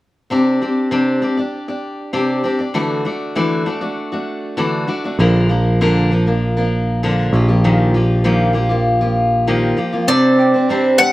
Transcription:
0.30 C3 C4 D4 G4 D5
0.61 C4 D4 G4 D5
0.91 C3 C4 D4 G4 D5
1.22 C4 D4 G4 D5
1.37 D4 G4 D5
1.68 D4 G4 D5
2.13 C3 C4 D4 G4 D5
2.44 C4 D4 G4 D5
2.59 D4 G4 D5
2.74 D3 E3 A3 D4 F#4 D5
3.05 A3 D4 F#4 D5
3.35 D3 E3 A3 D4 F#4 D5
3.66 A3 D4 F#4 D5
3.81 A3 D4 F#4 D5
4.12 A3 D4 F#4 D5
4.57 D3 E3 A3 D4 F#4 D5
4.87 A3 D4 F#4 D5
5.04 A3 D4 F#4 D5
5.19 A#1 A#2 D3 F3 A#3 D4 A#4
5.49 F3 A#3 D4 A#4
5.81 A#2 D3 F3 A#3 D4 A#4
6.11 F3 A#3 D4 A#4
6.26 F3 A#3 D4 A#4
6.57 F3 A#3 D4 A#4
7.03 A#2 D3 F3 A#3 D4 A#4
7.33 A#1 F3 A#3 F4 G4
7.48 F3 A#3 F4 G4
7.64 A#2 D#3 F3 A#3 F4 G4
7.94 F3 A#3 F4 G4
8.24 A#2 D#3 F3 A#3 F4 G4
8.53 F3 A#3 F4 G4
8.69 F3 A#3 F4 G4
9.01 F3 A#3 F4 G4
9.47 A#2 D#3 F3 A#3 F4 G4
9.77 F3 A#3 F4 G4
9.93 F3 A#3 F4 G4
10.07 C3 G3 C4 D4 C5 D5
10.38 G4
10.54 C4 D4 C5
10.69 C3 G3 C4 D4 C5
10.98 G3 C4 D4 C5 F#5

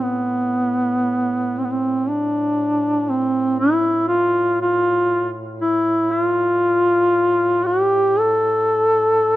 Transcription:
Already playing: A2
0.03 B3
1.58 C4
1.64 B3
1.71 C4
2.09 D4
3.09 C4
3.59 E4
4.08 F4
4.61 F4
5.61 E4
6.11 F4
7.66 G4
8.19 A4

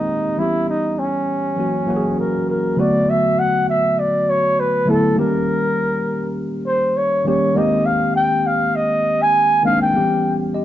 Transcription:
Already playing: D#3 G#3 A#3 C4 D#4 G4
0.37 E3 G3 B3 C#4 E4
0.41 G4
0.69 D#4
0.99 C#4
1.56 E3 F#3 A#3 C#4 F#4
1.86 E3 F#3 A#3 C#4 F#4
1.96 G#4
2.19 A#4
2.50 A#4
2.76 D3 F#3 A3 B3 F#4 D5
3.10 E5
3.39 F#5
3.69 E5
3.99 D5
4.29 C#5
4.60 B4
4.85 D3 F#3 A3 B3 E4
4.90 A4
5.15 D#3 G3 A#3 C#4 G4 A#4
6.67 C5
6.97 C#5
7.24 D#3 G3 A#3 C#4 G4 C#5
7.54 D#3 G#3 A#3 C4 G4 D#5
7.86 F5
8.16 G5
8.46 F5
8.76 D#5
9.22 G#5
9.63 D#3 G#3 A#3 C4 F5
9.67 D4
9.82 G5
9.93 E3 G3 B3 C#4 G4
10.54 G4 D#5

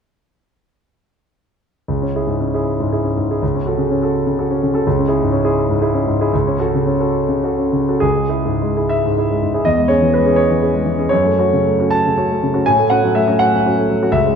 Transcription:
1.88 C#2
2.02 C#4
2.16 E4 G#4
2.27 G#2
2.40 C#4
2.54 E4 G#4
2.80 G#2
2.92 E4 G#4
3.03 C#4
3.17 G#2
3.31 E4 G#4
3.42 C#2
3.55 C#4
3.66 F#4 A4
3.78 C#3
3.91 C#4
4.02 F#4 A4
4.26 C#3
4.39 F#4 A4
4.50 C#4
4.63 C#3
4.74 F#4 A4
4.87 C#2
4.99 C#4
5.08 E4 G#4
5.22 G#2
5.32 C#4
5.44 E4 G#4
5.69 G#2
5.82 E4 G#4
5.94 C#4
6.07 G#2
6.21 E4 G#4
6.34 C#2
6.47 C#4
6.60 F#4 A4
6.74 C#3
6.86 C#4
7.00 F#4 A4
7.29 C#3
7.43 F#4 A4
7.58 C#4
7.72 C#3
7.88 F#4 A4
8.00 C#2 G#4
8.15 G#3
8.29 E4 G#4
8.45 G#2
8.62 G#3
8.77 E4 G#4
8.89 E5
9.05 G#2
9.17 E4 G#4
9.31 G#3
9.43 G#2
9.54 E4 G#4
9.65 E2 D#5
9.78 G#3
9.88 C#4 G#4 C#5
10.01 E3
10.14 G#3 B4
10.26 C#4 G#4
10.36 C#5
10.50 E3
10.63 C#4 G#4
10.74 G#3
10.85 E3
10.97 C#4 G#4
11.09 F#2 C#5
11.25 A3
11.39 C#4 F#4
11.53 C#3
11.66 A3
11.79 C#4 F#4
11.90 A5
12.06 C#3
12.18 C#4 F#4
12.31 A3
12.43 C#3
12.54 C#4 F#4
12.66 A2 G#5
12.79 A3
12.90 C#4 F#4 F#5
13.04 F#3
13.15 A3 E5
13.28 C#4 F#4
13.39 F#5
13.54 F#3
13.66 C#4 F#4
13.78 A3
13.89 F#3
14.03 C#4 F#4
14.12 C#2 E5
14.26 G#3

